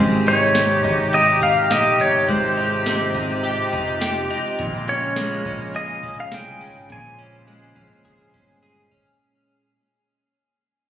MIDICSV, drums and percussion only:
0, 0, Header, 1, 2, 480
1, 0, Start_track
1, 0, Tempo, 576923
1, 1897, Time_signature, 4, 2, 24, 8
1, 9061, End_track
2, 0, Start_track
2, 0, Title_t, "Drums"
2, 219, Note_on_c, 9, 42, 45
2, 303, Note_off_c, 9, 42, 0
2, 457, Note_on_c, 9, 38, 85
2, 462, Note_on_c, 9, 42, 63
2, 540, Note_off_c, 9, 38, 0
2, 545, Note_off_c, 9, 42, 0
2, 695, Note_on_c, 9, 42, 49
2, 699, Note_on_c, 9, 36, 89
2, 779, Note_off_c, 9, 42, 0
2, 783, Note_off_c, 9, 36, 0
2, 941, Note_on_c, 9, 42, 77
2, 1024, Note_off_c, 9, 42, 0
2, 1179, Note_on_c, 9, 42, 44
2, 1181, Note_on_c, 9, 36, 76
2, 1262, Note_off_c, 9, 42, 0
2, 1264, Note_off_c, 9, 36, 0
2, 1421, Note_on_c, 9, 38, 114
2, 1426, Note_on_c, 9, 42, 62
2, 1504, Note_off_c, 9, 38, 0
2, 1509, Note_off_c, 9, 42, 0
2, 1664, Note_on_c, 9, 42, 49
2, 1747, Note_off_c, 9, 42, 0
2, 1901, Note_on_c, 9, 36, 96
2, 1901, Note_on_c, 9, 42, 70
2, 1984, Note_off_c, 9, 36, 0
2, 1984, Note_off_c, 9, 42, 0
2, 2144, Note_on_c, 9, 42, 42
2, 2227, Note_off_c, 9, 42, 0
2, 2381, Note_on_c, 9, 38, 98
2, 2386, Note_on_c, 9, 42, 61
2, 2465, Note_off_c, 9, 38, 0
2, 2469, Note_off_c, 9, 42, 0
2, 2617, Note_on_c, 9, 42, 45
2, 2620, Note_on_c, 9, 36, 83
2, 2700, Note_off_c, 9, 42, 0
2, 2704, Note_off_c, 9, 36, 0
2, 2864, Note_on_c, 9, 42, 71
2, 2948, Note_off_c, 9, 42, 0
2, 3099, Note_on_c, 9, 42, 42
2, 3102, Note_on_c, 9, 36, 77
2, 3182, Note_off_c, 9, 42, 0
2, 3185, Note_off_c, 9, 36, 0
2, 3341, Note_on_c, 9, 38, 106
2, 3346, Note_on_c, 9, 42, 60
2, 3424, Note_off_c, 9, 38, 0
2, 3429, Note_off_c, 9, 42, 0
2, 3582, Note_on_c, 9, 42, 45
2, 3665, Note_off_c, 9, 42, 0
2, 3817, Note_on_c, 9, 42, 77
2, 3820, Note_on_c, 9, 36, 99
2, 3900, Note_off_c, 9, 42, 0
2, 3903, Note_off_c, 9, 36, 0
2, 4058, Note_on_c, 9, 42, 47
2, 4141, Note_off_c, 9, 42, 0
2, 4296, Note_on_c, 9, 38, 82
2, 4301, Note_on_c, 9, 42, 68
2, 4379, Note_off_c, 9, 38, 0
2, 4384, Note_off_c, 9, 42, 0
2, 4535, Note_on_c, 9, 42, 42
2, 4539, Note_on_c, 9, 36, 79
2, 4618, Note_off_c, 9, 42, 0
2, 4622, Note_off_c, 9, 36, 0
2, 4778, Note_on_c, 9, 42, 63
2, 4861, Note_off_c, 9, 42, 0
2, 5015, Note_on_c, 9, 42, 40
2, 5020, Note_on_c, 9, 36, 66
2, 5098, Note_off_c, 9, 42, 0
2, 5103, Note_off_c, 9, 36, 0
2, 5255, Note_on_c, 9, 38, 96
2, 5261, Note_on_c, 9, 42, 53
2, 5339, Note_off_c, 9, 38, 0
2, 5344, Note_off_c, 9, 42, 0
2, 5500, Note_on_c, 9, 42, 46
2, 5583, Note_off_c, 9, 42, 0
2, 5739, Note_on_c, 9, 42, 68
2, 5740, Note_on_c, 9, 36, 101
2, 5823, Note_off_c, 9, 36, 0
2, 5823, Note_off_c, 9, 42, 0
2, 5979, Note_on_c, 9, 42, 42
2, 6062, Note_off_c, 9, 42, 0
2, 6223, Note_on_c, 9, 42, 59
2, 6306, Note_off_c, 9, 42, 0
2, 6455, Note_on_c, 9, 42, 45
2, 6459, Note_on_c, 9, 36, 74
2, 6539, Note_off_c, 9, 42, 0
2, 6542, Note_off_c, 9, 36, 0
2, 6699, Note_on_c, 9, 36, 69
2, 6699, Note_on_c, 9, 42, 68
2, 6782, Note_off_c, 9, 36, 0
2, 6782, Note_off_c, 9, 42, 0
2, 6937, Note_on_c, 9, 42, 42
2, 6940, Note_on_c, 9, 36, 70
2, 7021, Note_off_c, 9, 42, 0
2, 7024, Note_off_c, 9, 36, 0
2, 7184, Note_on_c, 9, 42, 58
2, 7267, Note_off_c, 9, 42, 0
2, 7420, Note_on_c, 9, 42, 45
2, 7421, Note_on_c, 9, 36, 72
2, 7503, Note_off_c, 9, 42, 0
2, 7504, Note_off_c, 9, 36, 0
2, 9061, End_track
0, 0, End_of_file